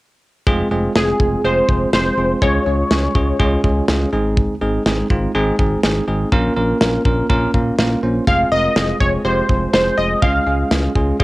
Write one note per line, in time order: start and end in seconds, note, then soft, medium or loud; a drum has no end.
0.47 0.64 F1 loud
0.47 0.67 G#3 loud
0.47 0.67 C4 loud
0.47 0.67 F4 loud
0.47 0.67 G#4 loud
0.47 kick loud
0.71 0.88 F1 loud
0.71 0.92 G#3 medium
0.71 0.92 C4 medium
0.71 0.92 F4 medium
0.71 0.92 G#4 loud
0.95 1.13 F1 loud
0.95 1.16 G#3 medium
0.95 1.16 C4 medium
0.95 1.16 F4 medium
0.95 1.16 G#4 medium
0.95 1.41 G#4 medium
0.95 snare loud
1.20 1.37 F1 loud
1.20 1.41 G#3 medium
1.20 1.41 C4 medium
1.20 1.41 F4 medium
1.20 1.41 G#4 medium
1.20 kick medium
1.44 1.61 F1 loud
1.44 1.65 G#3 medium
1.44 1.65 C4 medium
1.44 1.65 F4 medium
1.44 1.65 G#4 loud
1.44 1.90 C5 loud
1.69 1.86 F1 medium
1.69 1.89 G#3 medium
1.69 1.89 C4 medium
1.69 1.89 F4 medium
1.69 1.89 G#4 medium
1.69 kick medium
1.93 2.10 F1 loud
1.93 2.14 G#3 medium
1.93 2.14 C4 medium
1.93 2.14 F4 medium
1.93 2.14 G#4 medium
1.93 2.44 C5 loud
1.93 snare loud
2.18 2.35 F1 loud
2.18 2.38 G#3 medium
2.18 2.38 C4 medium
2.18 2.38 F4 medium
2.18 2.38 G#4 medium
2.42 2.59 C#2 loud
2.42 2.62 G#3 loud
2.42 2.62 C#4 medium
2.42 2.62 F4 medium
2.42 2.62 G#4 loud
2.42 4.09 C#5 loud
2.42 kick loud
2.66 2.83 C#2 loud
2.66 2.87 G#3 medium
2.66 2.87 C#4 medium
2.66 2.87 F4 medium
2.66 2.87 G#4 medium
2.91 3.08 C#2 loud
2.91 3.11 G#3 medium
2.91 3.11 C#4 medium
2.91 3.11 F4 medium
2.91 3.11 G#4 medium
2.91 snare loud
3.15 3.32 C#2 loud
3.15 3.36 G#3 medium
3.15 3.36 C#4 medium
3.15 3.36 F4 medium
3.15 3.36 G#4 loud
3.15 kick medium
3.39 3.57 C#2 loud
3.39 3.60 G#3 loud
3.39 3.60 C#4 loud
3.39 3.60 F4 loud
3.39 3.60 G#4 loud
3.39 kick medium
3.64 3.81 C#2 loud
3.64 3.85 G#3 medium
3.64 3.84 C#4 medium
3.64 3.84 F4 medium
3.64 3.84 G#4 medium
3.64 kick medium
3.88 4.05 C#2 loud
3.88 4.09 G#3 medium
3.88 4.09 C#4 medium
3.88 4.09 F4 medium
3.88 4.09 G#4 medium
3.88 snare loud
4.13 4.47 G#1 loud
4.13 4.54 G#3 medium
4.13 4.54 C4 medium
4.13 4.54 D#4 medium
4.13 4.54 G#4 loud
4.37 kick loud
4.61 4.79 G#1 medium
4.61 4.82 G#3 medium
4.61 4.82 C4 medium
4.61 4.82 D#4 medium
4.61 4.82 G#4 loud
4.86 5.03 G#1 loud
4.86 5.06 G#3 medium
4.86 5.06 C4 medium
4.86 5.06 D#4 medium
4.86 5.06 G#4 medium
4.86 snare loud
5.10 5.27 G#1 medium
5.10 5.31 G#3 medium
5.10 5.31 C4 medium
5.10 5.31 D#4 medium
5.10 5.31 F4 loud
5.10 kick medium
5.35 5.52 G#1 loud
5.35 5.55 G#3 loud
5.35 5.55 C4 loud
5.35 5.55 D#4 loud
5.35 5.55 G#4 loud
5.59 5.76 G#1 medium
5.59 5.80 G#3 medium
5.59 5.80 C4 medium
5.59 5.80 D#4 medium
5.59 5.80 G#4 medium
5.59 kick medium
5.83 6.01 G#1 loud
5.83 6.04 G#3 medium
5.83 6.04 C4 medium
5.83 6.04 D#4 medium
5.83 6.04 G#4 loud
5.83 snare loud
6.08 6.25 G#1 loud
6.08 6.28 G#3 medium
6.08 6.28 C4 medium
6.08 6.28 D#4 medium
6.08 6.28 G#4 medium
6.32 6.49 A#1 loud
6.32 6.53 A#3 loud
6.32 6.53 C#4 loud
6.32 6.53 F4 loud
6.32 6.53 A#4 loud
6.32 kick loud
6.56 6.74 A#1 loud
6.56 6.77 A#3 medium
6.56 6.77 C#4 medium
6.56 6.77 F4 medium
6.56 6.77 A#4 loud
6.81 6.98 A#1 loud
6.81 7.01 A#3 medium
6.81 7.02 C#4 medium
6.81 7.02 F4 medium
6.81 7.02 A#4 loud
6.81 snare loud
7.05 7.22 A#1 loud
7.05 7.26 A#3 medium
7.05 7.26 C#4 medium
7.05 7.26 F4 medium
7.05 7.26 A#4 loud
7.05 kick medium
7.30 7.47 A#1 loud
7.30 7.50 A#3 loud
7.30 7.50 C#4 loud
7.30 7.50 F4 loud
7.30 7.50 A#4 loud
7.30 kick medium
7.54 7.71 A#1 loud
7.54 7.75 A#3 medium
7.54 7.75 C#4 medium
7.54 7.75 F4 medium
7.54 7.75 A#4 medium
7.54 kick medium
7.78 7.96 A#1 loud
7.78 7.99 A#3 medium
7.78 7.99 C#4 medium
7.78 7.99 F4 medium
7.78 7.99 A#4 medium
7.78 snare loud
8.03 8.20 A#1 loud
8.03 8.24 A#3 medium
8.03 8.24 C#4 medium
8.03 8.24 F4 medium
8.03 8.24 C5 medium
8.27 8.44 F1 loud
8.27 8.48 G#3 loud
8.27 8.48 C4 medium
8.27 8.48 F4 medium
8.27 8.48 G#4 loud
8.27 8.50 F5 loud
8.27 kick loud
8.52 8.69 F1 loud
8.52 8.72 G#3 medium
8.52 8.72 C4 medium
8.52 8.72 F4 medium
8.52 8.72 A#4 medium
8.52 8.97 D#5 loud
8.76 8.93 F1 loud
8.76 8.97 G#3 medium
8.76 8.97 C4 medium
8.76 8.97 F4 medium
8.76 8.97 G#4 medium
8.76 snare loud
9.00 9.18 F1 loud
9.00 9.21 G#3 medium
9.00 9.21 C4 medium
9.00 9.21 F4 medium
9.00 9.21 G#4 medium
9.00 9.11 C#5 medium
9.00 kick medium
9.25 9.42 F1 loud
9.25 9.45 G#3 medium
9.25 9.45 C4 medium
9.25 9.45 F4 medium
9.25 9.45 G4 loud
9.25 9.72 C5 medium
9.49 9.66 F1 medium
9.49 9.70 G#3 medium
9.49 9.70 C4 medium
9.49 9.70 F4 medium
9.49 9.70 G#4 medium
9.49 kick medium
9.73 9.91 F1 loud
9.73 9.94 G#3 medium
9.73 9.94 C4 medium
9.73 9.94 F4 medium
9.73 9.94 G#4 medium
9.73 9.99 C5 medium
9.73 snare loud
9.98 10.15 F1 loud
9.98 10.19 G#3 medium
9.98 10.19 C4 medium
9.98 10.19 F4 medium
9.98 10.19 G#4 medium
9.98 10.23 D#5 medium
10.22 10.39 C#2 loud
10.22 10.43 G#3 loud
10.22 10.43 C#4 medium
10.22 10.43 F4 medium
10.22 10.43 G#4 loud
10.22 10.91 F5 loud
10.22 kick loud
10.47 10.64 C#2 loud
10.47 10.67 G#3 medium
10.47 10.67 C#4 medium
10.47 10.67 F4 medium
10.47 10.67 G#4 medium
10.71 10.88 C#2 loud
10.71 10.92 G#3 medium
10.71 10.92 C#4 medium
10.71 10.92 F4 medium
10.71 10.92 G#4 medium
10.71 snare loud
10.95 11.13 C#2 loud
10.95 11.16 G#3 medium
10.95 11.16 C#4 medium
10.95 11.16 F4 medium
10.95 11.16 G#4 loud
10.95 kick medium
11.20 11.24 C#2 loud
11.20 11.24 G#3 loud
11.20 11.24 C#4 loud
11.20 11.24 F4 loud
11.20 11.24 G#4 loud
11.20 kick loud